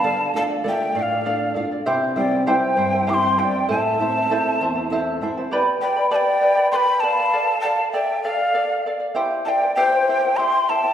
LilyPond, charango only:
\new Staff \with { instrumentName = "Charango" } { \time 6/8 \key g \mixolydian \tempo 4. = 66 <a' d'' f''>8 <a' d'' f''>16 <d'' f''>16 <a' d''>8 <a' d'' f''>16 <d'' f''>16 <a' d'' f''>8 <a' d'' f''>16 <d'' f''>16 | <e' g' c'' e'' g''>8 <e' c'' e'' g''>16 <e' c'' g''>16 <e' g' c'' e'' g''>8 <e' c'' e'' g''>16 <e' c'' g''>16 <e' g' c'' e'' g''>8 <e' c'' e'' g''>16 <e' c'' g''>16 | <e' a' c'' e'' a''>8 <e' c'' e'' a''>16 <e' c'' a''>16 <e' a' c'' e'' a''>8 <e' c'' e'' a''>16 <e' c'' a''>16 <e' a' c'' e'' a''>8 <e' c'' e'' a''>16 <e' c'' a''>16 | <g' b' d'' g'' b''>8 <b' d'' g'' b''>16 <b' d'' b''>16 <g' b' d'' g'' b''>8 <b' d'' g'' b''>16 <b' d'' b''>16 <g' b' d'' g'' b''>8 <b' d'' g'' b''>16 <b' d'' b''>16 |
<a' d'' f''>8 <a' d'' f''>16 <d'' f''>16 <a' d''>8 <a' d'' f''>16 <d'' f''>16 <a' d'' f''>8 <a' d'' f''>16 <d'' f''>16 | <e' g' c'' e'' g''>8 <e' c'' e'' g''>16 <e' c'' g''>16 <e' g' c'' e'' g''>8 <e' c'' e'' g''>16 <e' c'' g''>16 <e' g' c'' e'' g''>8 <e' c'' e'' g''>16 <e' c'' g''>16 | }